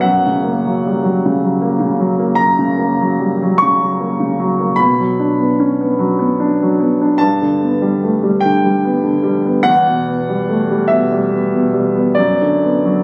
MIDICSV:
0, 0, Header, 1, 2, 480
1, 0, Start_track
1, 0, Tempo, 809717
1, 28, Time_signature, 12, 3, 24, 8
1, 508, Tempo, 768246
1, 1468, Tempo, 806452
1, 5308, Tempo, 826446
1, 6748, Tempo, 873362
1, 7688, End_track
2, 0, Start_track
2, 0, Title_t, "Grand piano"
2, 0, Program_c, 0, 0
2, 0, Control_c, 0, 64, 127
2, 5, Note_on_c, 0, 78, 71
2, 23, Note_on_c, 0, 42, 48
2, 39, Control_c, 0, 64, 0
2, 139, Control_c, 0, 64, 127
2, 155, Note_on_c, 0, 49, 36
2, 261, Note_on_c, 0, 58, 36
2, 346, Note_off_c, 0, 49, 0
2, 391, Note_on_c, 0, 54, 35
2, 456, Note_off_c, 0, 58, 0
2, 511, Note_on_c, 0, 55, 33
2, 581, Note_off_c, 0, 54, 0
2, 622, Note_on_c, 0, 54, 39
2, 630, Note_off_c, 0, 55, 0
2, 757, Note_on_c, 0, 49, 40
2, 814, Note_off_c, 0, 54, 0
2, 870, Note_on_c, 0, 54, 39
2, 939, Note_off_c, 0, 49, 0
2, 982, Note_on_c, 0, 58, 40
2, 1054, Note_off_c, 0, 54, 0
2, 1097, Note_on_c, 0, 49, 35
2, 1171, Note_off_c, 0, 58, 0
2, 1220, Note_on_c, 0, 54, 38
2, 1293, Note_off_c, 0, 49, 0
2, 1343, Note_on_c, 0, 58, 39
2, 1418, Note_off_c, 0, 54, 0
2, 1440, Note_off_c, 0, 42, 0
2, 1443, Note_on_c, 0, 82, 80
2, 1456, Note_off_c, 0, 78, 0
2, 1466, Note_on_c, 0, 42, 42
2, 1540, Note_off_c, 0, 58, 0
2, 1582, Note_on_c, 0, 49, 38
2, 1699, Note_on_c, 0, 58, 41
2, 1777, Note_off_c, 0, 49, 0
2, 1832, Note_on_c, 0, 54, 39
2, 1896, Note_off_c, 0, 58, 0
2, 1946, Note_on_c, 0, 55, 32
2, 2023, Note_off_c, 0, 54, 0
2, 2068, Note_off_c, 0, 55, 0
2, 2081, Note_on_c, 0, 54, 40
2, 2175, Note_on_c, 0, 85, 94
2, 2177, Note_off_c, 0, 82, 0
2, 2199, Note_on_c, 0, 49, 44
2, 2266, Note_off_c, 0, 54, 0
2, 2313, Note_on_c, 0, 54, 39
2, 2383, Note_off_c, 0, 49, 0
2, 2427, Note_on_c, 0, 58, 40
2, 2499, Note_off_c, 0, 54, 0
2, 2543, Note_on_c, 0, 49, 40
2, 2615, Note_off_c, 0, 58, 0
2, 2660, Note_on_c, 0, 54, 44
2, 2735, Note_off_c, 0, 49, 0
2, 2782, Note_on_c, 0, 58, 39
2, 2854, Note_off_c, 0, 54, 0
2, 2876, Note_on_c, 0, 83, 84
2, 2879, Note_off_c, 0, 42, 0
2, 2897, Note_off_c, 0, 85, 0
2, 2900, Note_on_c, 0, 47, 53
2, 2903, Note_off_c, 0, 58, 0
2, 2913, Control_c, 0, 64, 0
2, 3016, Control_c, 0, 64, 127
2, 3018, Note_on_c, 0, 54, 40
2, 3135, Note_on_c, 0, 62, 40
2, 3211, Note_off_c, 0, 54, 0
2, 3255, Note_on_c, 0, 59, 37
2, 3327, Note_off_c, 0, 62, 0
2, 3375, Note_on_c, 0, 61, 35
2, 3444, Note_off_c, 0, 59, 0
2, 3493, Note_off_c, 0, 61, 0
2, 3501, Note_on_c, 0, 59, 38
2, 3608, Note_on_c, 0, 54, 42
2, 3689, Note_off_c, 0, 59, 0
2, 3728, Note_on_c, 0, 59, 45
2, 3804, Note_off_c, 0, 54, 0
2, 3852, Note_on_c, 0, 62, 42
2, 3926, Note_off_c, 0, 59, 0
2, 3985, Note_on_c, 0, 54, 41
2, 4050, Note_off_c, 0, 62, 0
2, 4090, Note_on_c, 0, 59, 39
2, 4177, Note_off_c, 0, 54, 0
2, 4218, Note_on_c, 0, 62, 41
2, 4290, Note_off_c, 0, 59, 0
2, 4317, Note_on_c, 0, 81, 87
2, 4319, Note_off_c, 0, 47, 0
2, 4331, Note_off_c, 0, 83, 0
2, 4335, Note_on_c, 0, 43, 51
2, 4342, Note_off_c, 0, 62, 0
2, 4354, Control_c, 0, 64, 0
2, 4455, Control_c, 0, 64, 127
2, 4460, Note_on_c, 0, 50, 40
2, 4576, Note_on_c, 0, 59, 44
2, 4658, Note_off_c, 0, 50, 0
2, 4694, Note_on_c, 0, 55, 41
2, 4777, Note_off_c, 0, 59, 0
2, 4827, Note_on_c, 0, 57, 34
2, 4896, Note_off_c, 0, 55, 0
2, 4943, Note_on_c, 0, 55, 39
2, 4949, Note_off_c, 0, 57, 0
2, 5046, Note_on_c, 0, 79, 79
2, 5056, Note_off_c, 0, 81, 0
2, 5073, Note_on_c, 0, 50, 43
2, 5137, Note_off_c, 0, 55, 0
2, 5189, Note_on_c, 0, 55, 40
2, 5260, Note_off_c, 0, 50, 0
2, 5310, Note_on_c, 0, 59, 40
2, 5376, Note_off_c, 0, 55, 0
2, 5420, Note_on_c, 0, 50, 39
2, 5495, Note_off_c, 0, 59, 0
2, 5529, Note_off_c, 0, 79, 0
2, 5532, Note_on_c, 0, 55, 42
2, 5611, Note_off_c, 0, 50, 0
2, 5664, Note_on_c, 0, 59, 38
2, 5728, Note_off_c, 0, 55, 0
2, 5752, Note_off_c, 0, 43, 0
2, 5763, Note_on_c, 0, 78, 97
2, 5776, Note_on_c, 0, 40, 52
2, 5782, Note_off_c, 0, 59, 0
2, 5789, Control_c, 0, 64, 0
2, 5876, Control_c, 0, 64, 127
2, 5906, Note_on_c, 0, 47, 42
2, 6023, Note_on_c, 0, 59, 39
2, 6095, Note_off_c, 0, 47, 0
2, 6147, Note_on_c, 0, 55, 38
2, 6215, Note_off_c, 0, 59, 0
2, 6266, Note_on_c, 0, 57, 35
2, 6339, Note_off_c, 0, 55, 0
2, 6386, Note_off_c, 0, 57, 0
2, 6389, Note_on_c, 0, 55, 37
2, 6488, Note_on_c, 0, 76, 73
2, 6498, Note_off_c, 0, 78, 0
2, 6509, Note_on_c, 0, 47, 42
2, 6580, Note_off_c, 0, 55, 0
2, 6629, Note_on_c, 0, 55, 40
2, 6699, Note_off_c, 0, 47, 0
2, 6744, Note_on_c, 0, 59, 41
2, 6815, Note_off_c, 0, 55, 0
2, 6865, Note_on_c, 0, 47, 37
2, 6928, Note_off_c, 0, 59, 0
2, 6973, Note_on_c, 0, 55, 37
2, 7050, Note_off_c, 0, 47, 0
2, 7093, Note_on_c, 0, 59, 40
2, 7166, Note_off_c, 0, 55, 0
2, 7192, Note_off_c, 0, 40, 0
2, 7200, Note_on_c, 0, 74, 72
2, 7207, Note_off_c, 0, 76, 0
2, 7215, Note_off_c, 0, 59, 0
2, 7216, Note_on_c, 0, 42, 52
2, 7226, Control_c, 0, 64, 0
2, 7316, Control_c, 0, 64, 127
2, 7348, Note_on_c, 0, 50, 38
2, 7469, Note_on_c, 0, 59, 39
2, 7538, Note_off_c, 0, 50, 0
2, 7588, Note_on_c, 0, 54, 41
2, 7661, Note_off_c, 0, 59, 0
2, 7688, Note_off_c, 0, 42, 0
2, 7688, Note_off_c, 0, 54, 0
2, 7688, Note_off_c, 0, 74, 0
2, 7688, End_track
0, 0, End_of_file